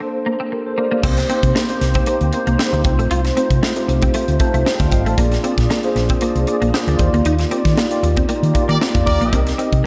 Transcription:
Already playing: A#3 D4 A4 C5
0.00 muted clean electric guitar stroke
0.26 A#3
0.40 C4
0.52 G4 A#4, muted clean electric guitar stroke
0.66 A4 C5
0.78 A#3 A#4 D5
0.91 A#3 D5 F5
1.03 C2 A#3 C4 D#4 G4 C5, kick, crash
1.17 muted clean electric guitar stroke, snare, closed hi-hat
1.29 A#3 C4 D#4 G4 C5, closed hi-hat
1.43 C3, kick, closed hi-hat
1.55 A#3, snare
1.69 A#3 C4 D#4 G4 C5, closed hi-hat
1.81 C2, muted clean electric guitar stroke, snare, closed hi-hat
1.94 C4, kick, closed hi-hat
2.06 A#3 C4 D#4 G4 C5, closed hi-hat
2.21 D2, closed hi-hat
2.33 A#3 C4 D#4 G4 C5, muted clean electric guitar stroke, closed hi-hat
2.47 C2 A#3, closed hi-hat
2.59 C4, snare
2.72 D2 A#3 C4 D#4 G4 C5, muted clean electric guitar stroke, closed hi-hat
2.84 C2 A3 C4 D#4 F4 C5, kick, closed hi-hat
2.99 A#1 A3, closed hi-hat
3.11 C2 F4, closed hi-hat
3.25 muted clean electric guitar stroke, snare, closed hi-hat
3.36 A3 C4 D#4 F4 C5, closed hi-hat
3.51 C3, kick, closed hi-hat
3.63 A3, snare
3.76 A3 C4 D#4 F4 G4, closed hi-hat
3.88 C2, muted clean electric guitar stroke, closed hi-hat
4.02 C4, kick, closed hi-hat
4.13 A3 C4 D#4 F4 C5, closed hi-hat
4.28 D2, closed hi-hat
4.39 A3 C4 D#4 F4 C5 A5, muted clean electric guitar stroke, kick, closed hi-hat
4.54 C2 A3, closed hi-hat
4.66 C4 G5, snare
4.80 D2 D5 F5, muted clean electric guitar stroke, kick, closed hi-hat
4.92 G1 D#5 F5 G5, kick, closed hi-hat
5.06 A1 A3 F5 A5, closed hi-hat
5.17 A#1 A#3 D4 F4 G#4 D5, kick, closed hi-hat
5.32 muted clean electric guitar stroke, snare, closed hi-hat
5.42 A#3 C4 D4 F4 G#4 D5, closed hi-hat
5.58 A#2, kick, snare, closed hi-hat
5.70 A#3, snare
5.83 A#3 D4 F4 G#4 C5, closed hi-hat
5.95 A#1, muted clean electric guitar stroke, snare, closed hi-hat
6.09 C4, kick, closed hi-hat
6.21 A#3 D4 F4 G#4 D5, closed hi-hat
6.35 C2, closed hi-hat
6.46 A#3 D4 F4 G#4 D5, muted clean electric guitar stroke, closed hi-hat
6.62 A#1 A#3, closed hi-hat
6.74 C4, snare
6.87 D2 A#3 D4 F4 G#4 D5, muted clean electric guitar stroke, closed hi-hat
6.99 D#2 A#3 D#4 F4 G4 C5, kick, closed hi-hat
7.06 D5
7.13 D2 A#3, closed hi-hat
7.25 D#2 D#4, closed hi-hat
7.39 muted clean electric guitar stroke, snare, closed hi-hat
7.50 A#3 C4 D#4 F4 G4 D5, closed hi-hat
7.65 D#3, kick, snare, closed hi-hat
7.78 A#3, snare
7.90 A#3 D#4 F4 G4 D5, closed hi-hat
8.03 D#2, muted clean electric guitar stroke, closed hi-hat
8.17 C4, kick, closed hi-hat
8.28 A#3 D#4 F4 G4 D5, closed hi-hat
8.43 D#3, closed hi-hat
8.54 A#3 D#4 F4 G4 D5, muted clean electric guitar stroke, kick, closed hi-hat
8.69 D#3 A#3 G4 A#4 D5, closed hi-hat
8.81 C4, snare
8.94 F2 A#3 D#4 F4 G4 D5, muted clean electric guitar stroke, kick, closed hi-hat
9.07 D#2 G4 A#4 D5, kick, open hi-hat
9.21 A#1 A#3, closed hi-hat
9.32 C2 C4 D#4 G4 A#4 D#5, kick, closed hi-hat
9.47 muted clean electric guitar stroke, snare, closed hi-hat
9.58 C4 D#4 G4 A#4 D#5, closed hi-hat
9.73 C3, kick, closed hi-hat

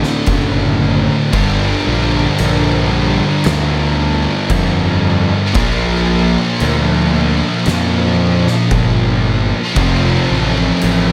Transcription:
Already playing: D2 A2 D3 A3 F4
0.03 snare
0.26 F#1, kick, crash
1.32 G1 G2 D3 G3 A#3 D4 G4, kick, crash
1.87 A#1
2.38 A#1, crash
2.91 G2 D3 G3
3.44 D2, snare, crash
4.50 F2, kick, crash
5.54 A#1 A#2 F3 A#3 D4 F4 A#4, kick, crash
6.60 D2, crash
7.13 A#2 F3 A#3
7.66 F2, snare, crash
8.47 snare
8.71 G1, kick, crash
9.76 F1 F2 C3 F3 A3 C4 F4, kick, crash
10.30 A1
10.81 A1, crash

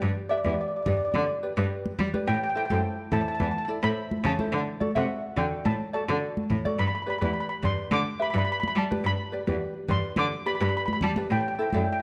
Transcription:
Already playing: G4 B4 D5 G5
0.02 G2
0.29 G4 B4 D5 E5
0.38 D5
0.44 E2 G4 B4 D5, high conga
0.53 D5
0.61 D5
0.68 D5
0.76 D5
0.82 G2 G4 D5, low conga
0.87 B4 D5
0.97 D5
1.05 D5
1.12 D3 D5, high conga
1.18 D5
1.26 D5
1.43 G4 B4 D5
1.57 G2 G4 B4 D5
1.86 high conga
1.99 G3, low conga
2.14 G4 B4 D5, high conga
2.27 A2 G5
2.34 G5
2.43 G5
2.50 G5
2.55 E4 A4 C5 G5
2.65 G5
2.70 F#2 E4 A4 C5 G5, high conga
3.12 A2 E4 A4 C5 A5, low conga
3.21 A5
3.28 A5
3.35 A5
3.40 E2 A5, high conga
3.51 A5
3.58 A5
3.65 E4 A4 D5 A5
3.83 A2 E4 A4 C5 B5
4.11 high conga
4.24 C#3 A5, low conga
4.39 E4 A4 C5, high conga
4.53 D3
4.80 F#4 A4 D5, high conga
4.95 C3 F#4 A4 E5 F#5, high conga
5.36 D3 F#4 A4 D5 G5, low conga
5.65 A2 A5, high conga
5.93 F#4 A4 D5 A5
6.08 D3 F#4 A4 D5
6.37 high conga
6.50 A2, low conga
6.65 F#4 A4 D5, high conga
6.79 G2 B5
6.87 B5
6.95 B5
7.02 B5
7.06 G4 B4 D5 B5
7.18 E2 G4 B4 D5 B5, high conga
7.25 B5
7.33 B5
7.40 B5
7.49 B5
7.63 G2 G4 B4 D5 C6, low conga
7.91 D3 D6, high conga
8.20 G4 B4 E5 B5
8.30 G2 B5
8.34 G4 B4 D5 B5
8.45 B5
8.52 B5
8.60 B5, high conga
8.68 B5
8.76 G3 A5
8.91 G4 B4 D5, high conga
9.04 G2 B5
9.32 G4 B4 D5
9.47 E2 G4 B4 D5, high conga
9.88 G2 G4 B4 D5 C6, low conga
10.16 D3 D6, high conga
10.46 G4 B4 D5 B5
10.55 B5
10.61 G2 G4 B4 D5 B5
10.69 B5
10.77 B5
10.86 B5, high conga
10.93 B5
11.01 G3 A5, low conga
11.16 G4 B4 D5, high conga
11.31 A2 G5
11.40 G5
11.48 G5
11.55 E4 A4 G5
11.60 C5 G5
11.70 F#2 E4 A4 G5, high conga
11.75 D5 G5
11.84 G5
11.92 G5

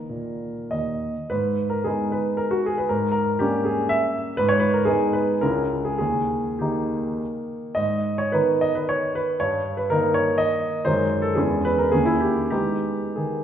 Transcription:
Already playing: D#3 A#3 D#4 A#4
0.09 A#2
0.71 D#2 D#5
1.30 G#2 B4
1.70 A#4
1.84 G#3 B3 D#4 G#4
2.12 B4
2.37 A#4
2.51 F#4
2.66 G#4
2.78 B4
2.89 G#2 A#4
3.12 A#4
3.39 G3 A#3 C#4 G4
3.65 G#4
3.89 E5
4.37 G#2 B4
4.49 C#5
4.60 B4
4.74 A#4
4.85 G#3 B3 D#4 G#4
5.13 B4
5.41 C#2 G#3 C#4 E4 A#4
5.85 G#4
5.98 D#2 G#4
6.59 D#3 A#3 D#4 G4
7.75 G#2 D#5
8.18 C#5
8.32 D#3 B3 D#4 B4
8.61 D#5
8.75 B4
8.89 C#5
9.15 B4
9.40 G2 C#5
9.77 B4
9.90 D#3 A#3 D#4 A#4
10.14 C#5
10.38 D#5
10.85 F#2 D#3 G#3 D#4 C5
11.22 A4
11.35 E2 E3 G#3 C#4 G#4
11.65 B4
11.78 A#4
11.92 D#2 D#3 A#3 C#4 G#4
12.05 E4
12.20 G4
12.50 G#3 B3 D#4 G4
13.16 D#3 G#4

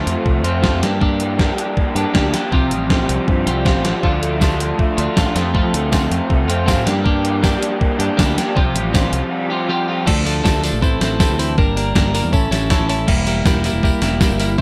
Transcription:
Already playing: F2 F3 A3 C4 F4
0.06 F2 C4, closed hi-hat
0.25 C2 A3, kick
0.44 F2 A3 C4 F4, closed hi-hat
0.62 F3 A3 C4 F4, kick, snare
0.72 F2
0.82 G2 A#3 D4 G4, snare, closed hi-hat
1.01 G2 A#3 D4 G4, kick
1.20 A#3, closed hi-hat
1.38 G3 A#3 D4 G4, kick, snare
1.58 D4, closed hi-hat
1.77 A#3, kick
1.95 G2 D4 G4, closed hi-hat
2.14 D2 A#3 D4 G4, kick, snare
2.33 D4 G4, snare, closed hi-hat
2.52 C2 C3 F3 C4 F4 G4, kick
2.62 C3
2.71 A1 G3, closed hi-hat
2.90 F3 C4 F4 G4, kick, snare
3.09 C2 C4, closed hi-hat
3.28 G2 G3, kick
3.46 C2 C4 F4 G4, closed hi-hat
3.65 F3 C4 F4 G4, kick, snare
3.75 A1
3.84 C4 F4 G4, snare, closed hi-hat
4.03 D2 D3 F3 A3 D4 F4, kick
4.21 A3, closed hi-hat
4.40 D3 F3 A3 D4 F4, kick, snare, tambourine
4.60 D4, closed hi-hat
4.79 A3, kick
4.97 D2 A3 D4 F4, closed hi-hat
5.16 A1 F3 A3 D4 F4, kick, snare, tambourine
5.35 F2 A3 C4 F4, snare, closed hi-hat
5.54 F2 A3 C4 F4, kick
5.64 F3
5.73 D2 A3, closed hi-hat
5.92 F3 A3 C4 F4, kick, snare, tambourine
6.11 F2 C4, closed hi-hat
6.30 C2 A3, kick
6.48 F2 C4 F4, closed hi-hat
6.66 A3 C4 F4, kick, snare, tambourine
6.76 A2
6.85 G2 A#3 D4 G4, snare, closed hi-hat
7.04 G2 A#3 D4 G4, kick
7.24 A#3, closed hi-hat
7.42 G3 A#3 D4 G4, kick, snare, tambourine
7.62 D4, closed hi-hat
7.81 A#3, kick
7.99 G2 D4 G4, closed hi-hat
8.17 D2 A#3 D4 G4, kick, snare, tambourine
8.37 D4 G4, snare, closed hi-hat
8.56 C2 C3 F3 C4 F4 G4, kick
8.65 C3
8.74 A1 G3, closed hi-hat
8.93 F3 C4 F4 G4, kick, snare, tambourine
9.12 C2 F4, closed hi-hat
9.32 G3
9.50 C4 F4 G4
9.69 F3 C4 F4 G4
9.88 C4 F4 G4
10.06 D2 F3 A3 D4 A4, kick, crash, tambourine
10.25 F3 A3 D4 A4, open hi-hat
10.43 D2 F3 A3 D4 A4, kick, snare, tambourine
10.63 F3 A3 D4 A4, open hi-hat, tambourine
10.73 A#1
10.82 A1 E3 C4 E4 A4, kick, tambourine
11.00 A1 E3 C4 E4 A4, snare, open hi-hat, tambourine
11.19 E3 C4 E4 A4, kick, snare, tambourine
11.30 D2
11.39 E3 C4 E4 A4, open hi-hat, tambourine
11.58 G1 G3 A#3 D4 A#4, kick, tambourine
11.76 G3 A#3 D4 A#4, open hi-hat
11.95 G1 G3 A#3 D4 A#4, kick, snare, tambourine
12.14 G3 A#3 D4 A#4, open hi-hat, tambourine
12.24 E2
12.32 A1 C#4 E4 A4, kick, tambourine
12.51 A1 C#4 E4 A4, snare, open hi-hat, tambourine
12.70 C#4 E4 A4, kick, snare, tambourine
12.79 A1
12.89 C#4 E4 A4, open hi-hat
13.07 E1 G3 A#3 E4, kick, crash, tambourine
13.27 G3 A#3 E4, open hi-hat
13.45 E1 G3 A#3 E4, kick, snare, tambourine
13.64 G3 A#3 E4, open hi-hat, tambourine
13.73 E1
13.83 G3 A#3 E4, kick, tambourine
14.02 E1 G3 A#3 E4, snare, open hi-hat, tambourine
14.21 G3 A#3 E4, kick, snare, tambourine
14.30 G1
14.39 G3 A#3 E4, open hi-hat, tambourine
14.58 A1 E3 C4

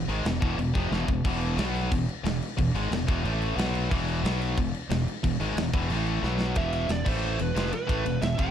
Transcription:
0.08 G#1 G#2 D#3 G#3, crash
0.25 E1 E2 B2, snare, crash
0.41 E1 E2 B2 E3, kick, crash
0.57 E1 E2 B2, crash
0.74 F1 F2 C3 F3, kick, crash
0.91 E1 E2 B2 E3, snare
1.08 E1 E2 B2, kick
1.24 E1 E2 B2 E3, kick, crash
1.41 crash
1.57 B1 B2 F#3 B3, snare, crash
1.75 crash
1.91 E1 E2 B2, kick, crash
2.09 crash
2.24 E1 E2 B2, snare, crash
2.42 crash
2.57 E1 E2 B2, kick, crash
2.74 G#1 G#2 D#3 G#3, crash
2.91 E1 E2 B2, snare, crash
3.07 E1 E2 B2 E3, kick, crash
3.23 A1 A2 E3 A3, crash
3.42 crash
3.56 B1 B2 F#3 B3, snare, crash
3.75 crash
3.89 E1 E2 B2 E3, kick, crash
4.08 crash
4.24 B1 B2 F#3 B3, snare, crash
4.41 crash
4.57 E1 E2 B2, kick, crash
4.74 crash
4.90 E1 E2 B2, snare, crash
5.08 crash
5.23 E1 E2 B2, kick, crash
5.40 G#1 G#2 D#3 G#3, crash
5.56 E1 E2 B2, snare, crash
5.74 E1 E2 B2 E3, kick, crash
5.90 A1 A2 E3 A3, crash
6.06 crash
6.23 B1 B2 F#3 B3, snare
6.41 snare
6.55 E1 E2 B2 E3 E5, kick, ride
6.73 E5, ride
6.89 E1 E2 B2 D5, snare, ride
7.05 A1 A2 E3 A3 C5, kick, crash
7.39 E1 E2 B2 B4, ride
7.55 F1 F2 C3 F3, snare, ride
7.66 snare
7.73 B4, ride
7.87 A1 A2 E3 A3, kick, ride
8.05 E1 E2 B2, ride
8.22 E1 E2 B2 E5, snare, ride
8.38 F1 F2 C3 F3 G#5, kick, ride

